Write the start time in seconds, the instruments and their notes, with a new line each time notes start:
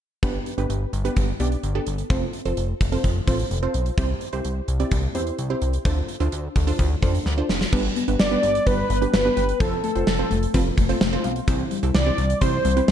0.23 analog synth bass G1, synth pluck B3 D4 G4 B4, kick, closed hi-hat
0.46 closed hi-hat
0.58 analog synth bass G1, synth pluck B3 D4 G4 B4, closed hi-hat
0.70 analog synth bass G1, closed hi-hat
0.93 analog synth bass G1, closed hi-hat
1.05 synth pluck B3 D4 G4 B4, closed hi-hat
1.16 analog synth bass G1, kick, closed hi-hat
1.40 analog synth bass B1, synth pluck B3 D4 G4 D5, closed hi-hat
1.52 closed hi-hat
1.63 analog synth bass G1, closed hi-hat
1.75 synth pluck B3 D4 G4 A4
1.86 analog synth bass G1, closed hi-hat
1.98 closed hi-hat
2.10 analog synth bass F1, synth pluck C4 F4 A4 C5, kick, closed hi-hat
2.33 closed hi-hat
2.45 analog synth bass F1, synth pluck C4 F4 A4 C5, closed hi-hat
2.57 analog synth bass F1, closed hi-hat
2.81 analog synth bass F1, kick, closed hi-hat
2.92 synth pluck C4 F4 A4 C5, closed hi-hat
3.04 analog synth bass F1, kick, closed hi-hat
3.27 analog synth bass A1, synth pluck C4 F4 A4 C5, kick, closed hi-hat
3.39 closed hi-hat
3.51 analog synth bass F1, closed hi-hat
3.63 synth pluck C4 F4 A4 C5
3.74 analog synth bass B1, closed hi-hat
3.86 closed hi-hat
3.98 analog synth bass C2, synth pluck C4 E4 G4 C5, kick, closed hi-hat
4.21 closed hi-hat
4.33 analog synth bass C2, synth pluck C4 E4 G4 C5, closed hi-hat
4.45 analog synth bass C2, closed hi-hat
4.68 analog synth bass C2, closed hi-hat
4.80 synth pluck C4 E4 G4 D5, closed hi-hat
4.91 analog synth bass C2, kick, closed hi-hat
5.15 analog synth bass E2, synth pluck C4 E4 G4 C5, closed hi-hat
5.27 closed hi-hat
5.38 analog synth bass C2, closed hi-hat
5.50 synth pluck C4 E4 G4 C5
5.62 analog synth bass C2, closed hi-hat
5.73 closed hi-hat
5.85 analog synth bass D2, synth pluck D4 F4 A4 C5, kick, closed hi-hat
6.08 closed hi-hat
6.20 analog synth bass D2, synth pluck D4 F4 A4 C5, closed hi-hat
6.32 analog synth bass D2, closed hi-hat
6.56 analog synth bass D2, kick, closed hi-hat
6.67 synth pluck D4 F4 A4 C5, closed hi-hat
6.79 analog synth bass D2, kick, closed hi-hat
7.02 analog synth bass F2, synth pluck D4 F4 A4 C5, kick, closed hi-hat
7.15 closed hi-hat
7.26 analog synth bass D2, snare
7.38 synth pluck D4 F4 A4 C5
7.49 analog synth bass F1, snare
7.61 snare
7.73 analog synth bass G1, synth pluck G3 B3 D4 G4 B4, kick, crash
7.96 synth pluck B3, closed hi-hat
8.08 analog synth bass G1, synth pluck B3 D4 G4 B4, closed hi-hat
8.20 analog synth bass G1, synth pluck G3, analog synth lead D5, snare
8.31 synth pluck B3 D4 G4 B4
8.43 analog synth bass G1, synth pluck B3, closed hi-hat
8.55 closed hi-hat
8.66 analog synth bass G1, synth pluck G3 B3 D4 G4 B4, analog synth lead B4, kick, closed hi-hat
8.90 analog synth bass G1, synth pluck B3, closed hi-hat
9.02 synth pluck B3 D4 G4 B4, closed hi-hat
9.13 analog synth bass G1, synth pluck B3, analog synth lead B4, snare
9.25 synth pluck B3 D4 G4 B4
9.37 analog synth bass G1, synth pluck G5, closed hi-hat
9.49 closed hi-hat
9.60 analog synth bass F1, synth pluck F3 C4 F4 A4 C5, analog synth lead A4, kick, closed hi-hat
9.84 synth pluck A3, analog synth lead A4, closed hi-hat
9.95 analog synth bass F1, synth pluck C4 F4 A4 C5, closed hi-hat
10.07 analog synth bass F1, synth pluck F3, snare
10.19 synth pluck C4 F4 A4 C5
10.31 analog synth bass F1, synth pluck A3, closed hi-hat
10.43 closed hi-hat
10.54 analog synth bass F1, synth pluck F3 C4 F4 A4 B4, kick, closed hi-hat
10.77 analog synth bass F1, synth pluck A3, kick, closed hi-hat
10.89 synth pluck C4 F4 A4 C5, closed hi-hat
11.01 analog synth bass F1, synth pluck A3, snare
11.13 synth pluck C4 F4 A4 C5
11.24 analog synth bass B1, synth pluck F5, closed hi-hat
11.36 closed hi-hat
11.48 analog synth bass C2, synth pluck E3 C4 E4 G4 C5, kick, closed hi-hat
11.71 synth pluck G3, closed hi-hat
11.83 analog synth bass C2, synth pluck C4 E4 G4 A4, closed hi-hat
11.95 analog synth bass C2, synth pluck E3, analog synth lead D5, snare
12.06 synth pluck C4 E4 G4 C5
12.18 analog synth bass C2, synth pluck G3, closed hi-hat
12.30 closed hi-hat
12.41 analog synth bass C2, synth pluck E3 C4 E4 G4 C5, analog synth lead C5, kick, closed hi-hat
12.65 analog synth bass C2, synth pluck G3, closed hi-hat
12.77 synth pluck C4 E4 G4 B4, closed hi-hat
12.88 analog synth bass C2, synth pluck G3, analog synth lead C5, snare